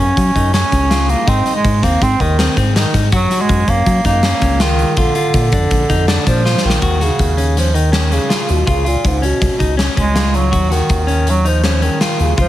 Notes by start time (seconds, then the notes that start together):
0.00 F#2 C#4
0.17 F#3, kick, closed hi-hat
0.36 F#2 D#4, kick, closed hi-hat
0.54 C#4, snare, closed hi-hat
0.72 C#2 C#4, kick, snare, closed hi-hat
0.90 F4, snare, closed hi-hat
1.09 A#3, closed hi-hat
1.27 G#2 C4 D#4, kick, closed hi-hat
1.46 D#4, snare, closed hi-hat
1.56 G#3
1.65 G#2, kick, closed hi-hat
1.83 D#2 A#3 C4, kick, snare, closed hi-hat
2.02 G#2 C4, kick, snare, closed hi-hat
2.20 D#2 D#3 D#4, kick, closed hi-hat
2.39 C4, snare, closed hi-hat
2.57 G#2 C4, kick, snare, closed hi-hat
2.76 D#3 D#4, snare, closed hi-hat
2.94 G#2, kick, snare, closed hi-hat
3.12 F#2 F#3 F#4, kick, closed hi-hat
3.31 F#4, snare, closed hi-hat
3.41 G#3
3.49 F#2, kick, closed hi-hat
3.68 F#2 A#3 C#4, kick, closed hi-hat
3.86 F#3, kick, closed hi-hat
4.05 F#2 A#3 D#4, kick, snare, closed hi-hat
4.23 C#4, snare, closed hi-hat
4.42 C#2 C#4, kick, snare, closed hi-hat
4.60 D#3 F4, snare, closed hi-hat
4.79 closed hi-hat
4.97 A#1 D3 F4, kick, closed hi-hat
5.15 F4, closed hi-hat
5.34 A#2, kick, closed hi-hat
5.52 F2 D4, kick, closed hi-hat
5.71 A#1, kick, closed hi-hat
5.90 F2 D#4, kick, snare, closed hi-hat
6.08 D4, snare, closed hi-hat
6.26 A#2 F3 D4, kick, snare, closed hi-hat
6.45 F4, snare
6.58 snare
6.65 A#1 D#3
6.70 snare
6.82 D#2 F#4, kick, closed hi-hat
7.00 C#3 F#4, snare, closed hi-hat
7.19 D#2, kick, closed hi-hat
7.37 C#4, closed hi-hat
7.57 F3, snare, closed hi-hat
7.74 D#3 D#4, closed hi-hat
7.92 C#4, snare, closed hi-hat
8.11 C#3 C#4, snare, closed hi-hat
8.30 F4, snare, closed hi-hat
8.49 D#2 B2, closed hi-hat
8.67 C#2 C#3 F4, kick, closed hi-hat
8.85 A#2 F4, closed hi-hat
9.05 C#2 G#2, kick, closed hi-hat
9.22 B2 C#4, closed hi-hat
9.42 C#2, kick, snare, closed hi-hat
9.59 C#2 D#4, kick, closed hi-hat
9.77 C#4, snare, closed hi-hat
9.97 C#2 G#3 C#4, kick, closed hi-hat
10.15 F4, snare, closed hi-hat
10.34 F#3, closed hi-hat
10.52 D#2 F#4, kick, closed hi-hat
10.70 D#3 F#4, snare, closed hi-hat
10.89 D#2, kick, closed hi-hat
11.07 C#4, closed hi-hat
11.27 F#3, closed hi-hat
11.45 F3 D#4, closed hi-hat
11.64 C#4, snare, closed hi-hat
11.82 D#3 C#4, closed hi-hat
12.01 F4, snare, closed hi-hat
12.19 D#2 C#3, closed hi-hat
12.37 C#2 F3 F4, kick, closed hi-hat